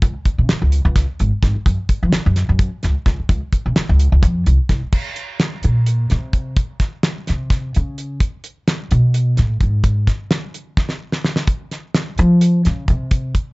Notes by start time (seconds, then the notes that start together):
0.02 C#2, kick, closed hi-hat
0.25 muted upright bass stroke, kick, closed hi-hat
0.38 C#3
0.49 muted upright bass stroke, snare, closed hi-hat
0.62 C#2
0.72 closed hi-hat
0.85 C#2
0.96 kick, snare, closed hi-hat
1.19 G#1, closed hi-hat
1.43 G#1, kick, snare, closed hi-hat
1.55 muted upright bass stroke
1.66 F#2, kick, closed hi-hat
1.89 muted upright bass stroke, kick, closed hi-hat
2.03 F#3
2.12 muted upright bass stroke, snare, closed hi-hat
2.26 F#2
2.36 snare, closed hi-hat
2.49 F#2
2.59 kick, closed hi-hat
2.83 C#2, snare, closed hi-hat
3.06 C#2, kick, snare, closed hi-hat
3.19 muted upright bass stroke
3.29 C#2, kick, closed hi-hat
3.53 muted upright bass stroke, kick, closed hi-hat
3.66 C#3
3.76 muted upright bass stroke, snare, closed hi-hat
3.89 C#2
4.00 closed hi-hat
4.12 C#2
4.23 F2, kick, closed hi-hat
4.46 C2, closed hi-hat
4.69 C2, kick, snare, closed hi-hat
4.82 muted upright bass stroke
4.92 kick, crash
5.16 closed hi-hat
5.40 snare, closed hi-hat
5.63 A#2, closed hi-hat
5.86 closed hi-hat
6.10 C3, snare, closed hi-hat
6.33 kick, closed hi-hat
6.57 kick, closed hi-hat
6.80 kick, snare, closed hi-hat
7.03 snare, closed hi-hat
7.27 C3, snare, closed hi-hat
7.50 kick, snare, closed hi-hat
7.75 C#3, closed hi-hat
7.98 closed hi-hat
8.20 kick, closed hi-hat
8.44 closed hi-hat
8.68 snare, closed hi-hat
8.91 B2, closed hi-hat
9.14 closed hi-hat
9.37 A2, snare, closed hi-hat
9.61 G#2, kick, closed hi-hat
9.84 kick, closed hi-hat
10.07 kick, snare, closed hi-hat
10.31 snare, closed hi-hat
10.54 closed hi-hat
10.77 kick, snare
10.89 snare
11.12 snare
11.24 snare
11.36 snare
11.47 kick, closed hi-hat
11.71 snare, closed hi-hat
11.94 snare, closed hi-hat
12.18 F3, closed hi-hat
12.41 closed hi-hat
12.65 C#3, snare, closed hi-hat
12.88 C3, kick, closed hi-hat
13.11 kick, closed hi-hat
13.35 kick, closed hi-hat